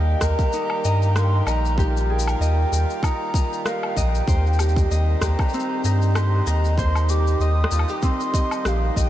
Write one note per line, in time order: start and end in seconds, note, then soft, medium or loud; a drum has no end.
0.00 0.15 D#2 loud
0.00 9.10 D#3 medium
0.00 4.24 G3 medium
0.00 4.24 A#3 medium
0.00 0.53 G4 medium
0.00 1.76 G4 loud
0.00 0.21 A#4 medium
0.00 0.85 D#5 medium
0.21 0.35 D#2 medium
0.21 1.15 A#4 medium
0.21 1.18 A#5 loud
0.21 kick medium
0.21 cross-stick medium
0.21 shaker medium
0.39 kick loud
0.39 shaker soft
0.53 3.04 D#4 medium
0.53 shaker soft
0.70 low woodblock medium
0.84 1.42 G2 medium
0.84 1.47 D#5 medium
0.84 shaker medium
1.02 shaker soft
1.16 2.09 A#4 medium
1.16 1.47 C6 loud
1.16 cross-stick medium
1.16 shaker soft
1.46 2.35 A#1 medium
1.46 2.40 D#5 medium
1.46 1.76 A#5 loud
1.46 low woodblock medium
1.46 shaker medium
1.65 shaker soft
1.78 4.26 F4 medium
1.78 4.60 G4 medium
1.78 1.86 A#5 loud
1.78 kick loud
1.78 shaker soft
1.97 shaker soft
2.09 2.27 G#4 medium
2.09 2.38 G5 loud
2.19 shaker medium
2.27 2.71 A#4 medium
2.27 low woodblock medium
2.27 shaker soft
2.39 2.65 D#2 loud
2.39 3.34 D#5 medium
2.39 3.05 G5 loud
2.39 shaker soft
2.72 2.85 D#2 medium
2.72 3.65 A#4 medium
2.72 shaker medium
2.90 shaker soft
3.03 5.54 D#4 medium
3.03 3.67 A#5 loud
3.03 kick loud
3.03 low woodblock medium
3.03 shaker soft
3.34 3.97 D#5 medium
3.34 kick loud
3.34 shaker medium
3.53 shaker soft
3.66 4.35 A#4 medium
3.66 3.99 F5 medium
3.66 cross-stick medium
3.66 shaker soft
3.83 low woodblock medium
3.96 4.22 A#1 loud
3.96 4.28 D#5 medium
3.96 4.91 G5 loud
3.96 kick medium
3.96 shaker medium
4.15 shaker soft
4.28 4.85 D#2 loud
4.28 9.10 G3 medium
4.28 6.76 C4 medium
4.28 9.10 D#4 medium
4.28 4.91 C5 medium
4.28 kick loud
4.28 shaker soft
4.46 shaker soft
4.53 shaker soft
4.59 5.22 G4 medium
4.59 low woodblock medium
4.59 shaker medium
4.69 shaker soft
4.76 kick loud
4.76 shaker soft
4.91 5.15 D#2 loud
4.91 5.85 D#5 medium
4.91 shaker soft
5.21 5.35 D#2 medium
5.21 6.16 G4 medium
5.21 6.17 A#5 loud
5.21 kick medium
5.21 cross-stick medium
5.21 shaker medium
5.39 kick loud
5.39 low woodblock medium
5.39 shaker soft
5.49 shaker soft
5.54 8.02 C4 medium
5.54 shaker soft
5.60 shaker soft
5.84 6.42 G2 medium
5.84 6.16 D#5 medium
5.84 shaker medium
6.02 shaker soft
6.15 6.47 G4 medium
6.15 6.49 C6 loud
6.15 cross-stick medium
6.15 low woodblock medium
6.15 shaker soft
6.47 7.35 D#2 medium
6.47 6.78 D#5 medium
6.47 6.80 A#5 loud
6.47 shaker medium
6.64 shaker soft
6.78 9.10 C5 medium
6.78 7.11 C6 loud
6.78 kick loud
6.78 shaker soft
6.96 low woodblock medium
6.96 shaker soft
7.09 7.72 G4 medium
7.09 7.43 D6 loud
7.09 shaker medium
7.27 shaker soft
7.40 7.65 D#2 loud
7.40 8.34 D#5 medium
7.40 8.03 D#6 loud
7.40 shaker soft
7.64 cross-stick medium
7.71 7.85 D#2 medium
7.71 7.90 F4 medium
7.71 shaker medium
7.79 low woodblock medium
7.88 8.64 G4 medium
7.88 shaker soft
8.02 9.10 C4 medium
8.02 8.69 C6 loud
8.02 kick loud
8.02 shaker soft
8.20 shaker soft
8.34 8.96 D#5 medium
8.34 kick loud
8.34 shaker medium
8.51 low woodblock medium
8.51 shaker soft
8.65 8.90 A#1 loud
8.65 9.10 G4 medium
8.65 8.98 F5 medium
8.65 cross-stick medium
8.65 shaker soft
8.96 9.10 A#1 medium
8.96 9.10 D#5 medium
8.96 9.10 G5 loud
8.96 kick medium
8.96 shaker medium